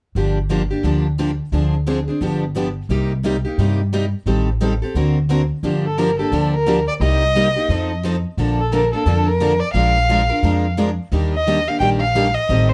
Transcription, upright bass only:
0, 0, Header, 1, 2, 480
1, 0, Start_track
1, 0, Key_signature, -2, "minor"
1, 0, Tempo, 342466
1, 221, Time_signature, 4, 2, 24, 8
1, 17851, End_track
2, 0, Start_track
2, 0, Title_t, "Upright bass"
2, 0, Program_c, 0, 32
2, 212, Note_on_c, 0, 31, 66
2, 984, Note_off_c, 0, 31, 0
2, 1170, Note_on_c, 0, 38, 63
2, 1942, Note_off_c, 0, 38, 0
2, 2129, Note_on_c, 0, 38, 68
2, 2902, Note_off_c, 0, 38, 0
2, 3096, Note_on_c, 0, 31, 73
2, 3866, Note_off_c, 0, 31, 0
2, 4052, Note_on_c, 0, 36, 73
2, 4823, Note_off_c, 0, 36, 0
2, 5017, Note_on_c, 0, 43, 65
2, 5787, Note_off_c, 0, 43, 0
2, 5967, Note_on_c, 0, 33, 71
2, 6741, Note_off_c, 0, 33, 0
2, 6933, Note_on_c, 0, 38, 71
2, 7705, Note_off_c, 0, 38, 0
2, 7889, Note_on_c, 0, 31, 71
2, 8662, Note_off_c, 0, 31, 0
2, 8852, Note_on_c, 0, 38, 70
2, 9624, Note_off_c, 0, 38, 0
2, 9809, Note_on_c, 0, 36, 77
2, 10582, Note_off_c, 0, 36, 0
2, 10773, Note_on_c, 0, 41, 78
2, 11545, Note_off_c, 0, 41, 0
2, 11737, Note_on_c, 0, 34, 76
2, 12508, Note_off_c, 0, 34, 0
2, 12696, Note_on_c, 0, 41, 76
2, 13467, Note_off_c, 0, 41, 0
2, 13649, Note_on_c, 0, 34, 76
2, 14424, Note_off_c, 0, 34, 0
2, 14615, Note_on_c, 0, 41, 70
2, 15388, Note_off_c, 0, 41, 0
2, 15581, Note_on_c, 0, 39, 74
2, 16351, Note_off_c, 0, 39, 0
2, 16542, Note_on_c, 0, 34, 74
2, 17312, Note_off_c, 0, 34, 0
2, 17507, Note_on_c, 0, 33, 77
2, 17851, Note_off_c, 0, 33, 0
2, 17851, End_track
0, 0, End_of_file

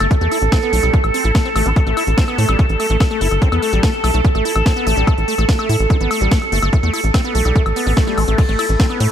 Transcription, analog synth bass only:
0, 0, Header, 1, 2, 480
1, 0, Start_track
1, 0, Key_signature, 0, "minor"
1, 0, Tempo, 413793
1, 125, Time_signature, 4, 2, 24, 8
1, 10573, End_track
2, 0, Start_track
2, 0, Title_t, "Analog synth bass"
2, 0, Program_c, 0, 38
2, 5, Note_on_c, 0, 31, 85
2, 86, Note_off_c, 0, 31, 0
2, 245, Note_on_c, 0, 40, 77
2, 326, Note_off_c, 0, 40, 0
2, 485, Note_on_c, 0, 33, 85
2, 566, Note_off_c, 0, 33, 0
2, 845, Note_on_c, 0, 35, 100
2, 926, Note_off_c, 0, 35, 0
2, 965, Note_on_c, 0, 35, 82
2, 1046, Note_off_c, 0, 35, 0
2, 1205, Note_on_c, 0, 33, 76
2, 1286, Note_off_c, 0, 33, 0
2, 1445, Note_on_c, 0, 33, 89
2, 1526, Note_off_c, 0, 33, 0
2, 1805, Note_on_c, 0, 33, 103
2, 1886, Note_off_c, 0, 33, 0
2, 1925, Note_on_c, 0, 33, 84
2, 2006, Note_off_c, 0, 33, 0
2, 2165, Note_on_c, 0, 33, 76
2, 2246, Note_off_c, 0, 33, 0
2, 2405, Note_on_c, 0, 33, 84
2, 2486, Note_off_c, 0, 33, 0
2, 2765, Note_on_c, 0, 45, 96
2, 2846, Note_off_c, 0, 45, 0
2, 2885, Note_on_c, 0, 33, 85
2, 2966, Note_off_c, 0, 33, 0
2, 3124, Note_on_c, 0, 33, 79
2, 3206, Note_off_c, 0, 33, 0
2, 3365, Note_on_c, 0, 33, 87
2, 3446, Note_off_c, 0, 33, 0
2, 3724, Note_on_c, 0, 31, 97
2, 3806, Note_off_c, 0, 31, 0
2, 3844, Note_on_c, 0, 31, 85
2, 3926, Note_off_c, 0, 31, 0
2, 4085, Note_on_c, 0, 40, 80
2, 4166, Note_off_c, 0, 40, 0
2, 4325, Note_on_c, 0, 33, 86
2, 4406, Note_off_c, 0, 33, 0
2, 4685, Note_on_c, 0, 35, 93
2, 4766, Note_off_c, 0, 35, 0
2, 4805, Note_on_c, 0, 35, 83
2, 4886, Note_off_c, 0, 35, 0
2, 5045, Note_on_c, 0, 33, 77
2, 5126, Note_off_c, 0, 33, 0
2, 5285, Note_on_c, 0, 33, 84
2, 5366, Note_off_c, 0, 33, 0
2, 5645, Note_on_c, 0, 33, 98
2, 5726, Note_off_c, 0, 33, 0
2, 5765, Note_on_c, 0, 33, 81
2, 5846, Note_off_c, 0, 33, 0
2, 6005, Note_on_c, 0, 33, 73
2, 6086, Note_off_c, 0, 33, 0
2, 6244, Note_on_c, 0, 33, 86
2, 6326, Note_off_c, 0, 33, 0
2, 6604, Note_on_c, 0, 45, 92
2, 6686, Note_off_c, 0, 45, 0
2, 6724, Note_on_c, 0, 33, 84
2, 6806, Note_off_c, 0, 33, 0
2, 6965, Note_on_c, 0, 33, 77
2, 7046, Note_off_c, 0, 33, 0
2, 7205, Note_on_c, 0, 33, 85
2, 7286, Note_off_c, 0, 33, 0
2, 7565, Note_on_c, 0, 31, 99
2, 7646, Note_off_c, 0, 31, 0
2, 7684, Note_on_c, 0, 31, 83
2, 7766, Note_off_c, 0, 31, 0
2, 7924, Note_on_c, 0, 40, 82
2, 8006, Note_off_c, 0, 40, 0
2, 8165, Note_on_c, 0, 33, 87
2, 8246, Note_off_c, 0, 33, 0
2, 8524, Note_on_c, 0, 35, 97
2, 8606, Note_off_c, 0, 35, 0
2, 8644, Note_on_c, 0, 35, 87
2, 8726, Note_off_c, 0, 35, 0
2, 8884, Note_on_c, 0, 33, 77
2, 8966, Note_off_c, 0, 33, 0
2, 9124, Note_on_c, 0, 33, 87
2, 9206, Note_off_c, 0, 33, 0
2, 9484, Note_on_c, 0, 33, 97
2, 9566, Note_off_c, 0, 33, 0
2, 9604, Note_on_c, 0, 33, 86
2, 9686, Note_off_c, 0, 33, 0
2, 9844, Note_on_c, 0, 33, 80
2, 9926, Note_off_c, 0, 33, 0
2, 10084, Note_on_c, 0, 33, 86
2, 10166, Note_off_c, 0, 33, 0
2, 10444, Note_on_c, 0, 45, 92
2, 10526, Note_off_c, 0, 45, 0
2, 10573, End_track
0, 0, End_of_file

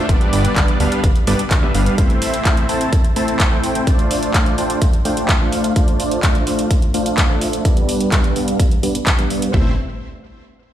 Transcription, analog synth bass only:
0, 0, Header, 1, 2, 480
1, 0, Start_track
1, 0, Key_signature, 0, "minor"
1, 0, Tempo, 472441
1, 93, Time_signature, 4, 2, 24, 8
1, 10903, End_track
2, 0, Start_track
2, 0, Title_t, "Analog synth bass"
2, 0, Program_c, 0, 38
2, 92, Note_on_c, 0, 31, 98
2, 167, Note_off_c, 0, 31, 0
2, 333, Note_on_c, 0, 31, 89
2, 482, Note_off_c, 0, 31, 0
2, 573, Note_on_c, 0, 31, 91
2, 648, Note_off_c, 0, 31, 0
2, 813, Note_on_c, 0, 38, 81
2, 887, Note_off_c, 0, 38, 0
2, 1053, Note_on_c, 0, 31, 80
2, 1127, Note_off_c, 0, 31, 0
2, 1293, Note_on_c, 0, 31, 92
2, 1367, Note_off_c, 0, 31, 0
2, 1533, Note_on_c, 0, 38, 97
2, 1682, Note_off_c, 0, 38, 0
2, 1774, Note_on_c, 0, 31, 101
2, 1922, Note_off_c, 0, 31, 0
2, 9693, Note_on_c, 0, 33, 94
2, 9916, Note_off_c, 0, 33, 0
2, 10903, End_track
0, 0, End_of_file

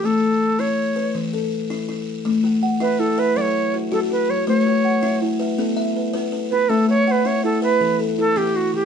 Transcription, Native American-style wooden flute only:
0, 0, Header, 1, 2, 480
1, 0, Start_track
1, 0, Key_signature, 3, "major"
1, 0, Tempo, 369914
1, 51, Time_signature, 12, 3, 24, 8
1, 11484, End_track
2, 0, Start_track
2, 0, Title_t, "Native American-style wooden flute"
2, 0, Program_c, 0, 77
2, 66, Note_on_c, 0, 69, 81
2, 773, Note_on_c, 0, 73, 81
2, 792, Note_off_c, 0, 69, 0
2, 1491, Note_off_c, 0, 73, 0
2, 3651, Note_on_c, 0, 71, 93
2, 3886, Note_on_c, 0, 69, 85
2, 3905, Note_off_c, 0, 71, 0
2, 4140, Note_on_c, 0, 71, 95
2, 4160, Note_off_c, 0, 69, 0
2, 4369, Note_on_c, 0, 74, 87
2, 4388, Note_off_c, 0, 71, 0
2, 4424, Note_on_c, 0, 73, 95
2, 4437, Note_off_c, 0, 74, 0
2, 4849, Note_off_c, 0, 73, 0
2, 5100, Note_on_c, 0, 69, 89
2, 5178, Note_off_c, 0, 69, 0
2, 5339, Note_on_c, 0, 71, 89
2, 5579, Note_on_c, 0, 73, 90
2, 5599, Note_off_c, 0, 71, 0
2, 5810, Note_off_c, 0, 73, 0
2, 5818, Note_on_c, 0, 73, 91
2, 6722, Note_off_c, 0, 73, 0
2, 8438, Note_on_c, 0, 71, 96
2, 8680, Note_on_c, 0, 69, 89
2, 8700, Note_off_c, 0, 71, 0
2, 8926, Note_off_c, 0, 69, 0
2, 8946, Note_on_c, 0, 73, 108
2, 9173, Note_off_c, 0, 73, 0
2, 9173, Note_on_c, 0, 73, 89
2, 9230, Note_on_c, 0, 71, 97
2, 9243, Note_off_c, 0, 73, 0
2, 9422, Note_on_c, 0, 73, 94
2, 9442, Note_off_c, 0, 71, 0
2, 9657, Note_off_c, 0, 73, 0
2, 9663, Note_on_c, 0, 69, 95
2, 9881, Note_off_c, 0, 69, 0
2, 9904, Note_on_c, 0, 71, 105
2, 10344, Note_off_c, 0, 71, 0
2, 10632, Note_on_c, 0, 69, 90
2, 10861, Note_on_c, 0, 67, 94
2, 10880, Note_off_c, 0, 69, 0
2, 11106, Note_on_c, 0, 66, 84
2, 11126, Note_off_c, 0, 67, 0
2, 11339, Note_off_c, 0, 66, 0
2, 11354, Note_on_c, 0, 67, 80
2, 11484, Note_off_c, 0, 67, 0
2, 11484, End_track
0, 0, End_of_file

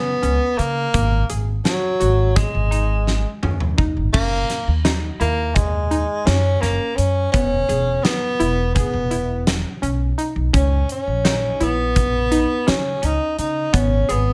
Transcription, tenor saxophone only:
0, 0, Header, 1, 2, 480
1, 0, Start_track
1, 0, Tempo, 710900
1, 635, Time_signature, 9, 3, 24, 8
1, 9676, End_track
2, 0, Start_track
2, 0, Title_t, "Tenor saxophone"
2, 0, Program_c, 0, 66
2, 0, Note_on_c, 0, 59, 84
2, 393, Note_on_c, 0, 58, 85
2, 403, Note_off_c, 0, 59, 0
2, 930, Note_off_c, 0, 58, 0
2, 1112, Note_on_c, 0, 54, 81
2, 1597, Note_on_c, 0, 56, 67
2, 1607, Note_off_c, 0, 54, 0
2, 2316, Note_off_c, 0, 56, 0
2, 2789, Note_on_c, 0, 58, 96
2, 3245, Note_off_c, 0, 58, 0
2, 3518, Note_on_c, 0, 58, 90
2, 3747, Note_on_c, 0, 56, 77
2, 3757, Note_off_c, 0, 58, 0
2, 4231, Note_on_c, 0, 61, 93
2, 4241, Note_off_c, 0, 56, 0
2, 4464, Note_on_c, 0, 58, 79
2, 4474, Note_off_c, 0, 61, 0
2, 4698, Note_on_c, 0, 61, 78
2, 4708, Note_off_c, 0, 58, 0
2, 4938, Note_off_c, 0, 61, 0
2, 4942, Note_on_c, 0, 61, 94
2, 5422, Note_on_c, 0, 59, 92
2, 5432, Note_off_c, 0, 61, 0
2, 5902, Note_off_c, 0, 59, 0
2, 5906, Note_on_c, 0, 59, 81
2, 6424, Note_off_c, 0, 59, 0
2, 7130, Note_on_c, 0, 61, 76
2, 7346, Note_off_c, 0, 61, 0
2, 7371, Note_on_c, 0, 61, 73
2, 7848, Note_on_c, 0, 59, 84
2, 7858, Note_off_c, 0, 61, 0
2, 8561, Note_on_c, 0, 61, 85
2, 8571, Note_off_c, 0, 59, 0
2, 8811, Note_on_c, 0, 63, 82
2, 8821, Note_off_c, 0, 61, 0
2, 9037, Note_off_c, 0, 63, 0
2, 9041, Note_on_c, 0, 63, 74
2, 9281, Note_on_c, 0, 61, 78
2, 9291, Note_off_c, 0, 63, 0
2, 9520, Note_on_c, 0, 59, 73
2, 9531, Note_off_c, 0, 61, 0
2, 9676, Note_off_c, 0, 59, 0
2, 9676, End_track
0, 0, End_of_file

